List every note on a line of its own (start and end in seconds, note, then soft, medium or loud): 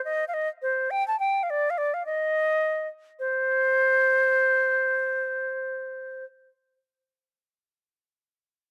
0.05 0.25 D#5 medium
0.28 0.35 F5 medium
0.34 0.49 D#5 loud
0.62 0.92 C5 loud
0.91 1.06 G5 loud
1.08 1.19 A5 medium
1.20 1.45 G5 loud
1.43 1.52 F5 medium
1.50 1.72 D5 medium
1.70 1.79 F5 medium
1.78 1.95 D5 medium
1.94 2.05 F5 medium
2.06 2.88 D#5 loud
3.19 6.25 C5 loud